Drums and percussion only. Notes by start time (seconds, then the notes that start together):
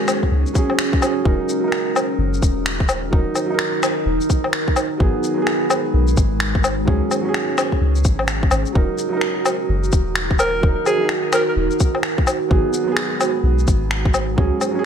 0.08 finger snap, low woodblock, shaker
0.23 kick
0.46 shaker
0.55 kick, shaker
0.70 low woodblock
0.79 finger snap
0.93 kick
1.02 low woodblock, shaker
1.25 kick
1.49 shaker
1.72 finger snap
1.96 low woodblock, shaker
2.34 shaker
2.42 kick, shaker
2.66 finger snap
2.80 kick
2.89 low woodblock, shaker
3.13 kick
3.35 low woodblock, shaker
3.59 finger snap
3.83 finger snap, low woodblock, shaker
4.21 shaker
4.30 kick, shaker
4.44 low woodblock
4.53 finger snap
4.68 kick
4.76 low woodblock, shaker
5.00 kick
5.24 shaker
5.47 finger snap
5.70 low woodblock, shaker
6.08 shaker
6.17 kick, shaker
6.40 finger snap
6.55 kick
6.64 low woodblock, shaker
6.88 kick
7.11 low woodblock, shaker
7.34 finger snap
7.58 finger snap, low woodblock, shaker
7.72 kick
7.96 shaker
8.04 kick, shaker
8.19 low woodblock
8.28 finger snap, shaker
8.43 kick
8.51 low woodblock, shaker
8.65 shaker
8.75 kick
8.98 shaker
9.21 finger snap
9.46 low woodblock, shaker
9.84 shaker
9.92 kick, shaker
10.15 finger snap
10.31 kick
10.39 low woodblock, shaker
10.63 kick
10.86 low woodblock, shaker
11.09 finger snap
11.33 finger snap, low woodblock, shaker
11.71 shaker
11.80 kick, shaker
11.95 low woodblock
12.03 finger snap
12.18 kick
12.27 low woodblock, shaker
12.51 kick
12.73 shaker
12.97 finger snap
13.21 low woodblock, shaker
13.59 shaker
13.67 kick, shaker
13.91 finger snap
14.05 kick
14.14 low woodblock, shaker
14.38 kick
14.61 low woodblock, shaker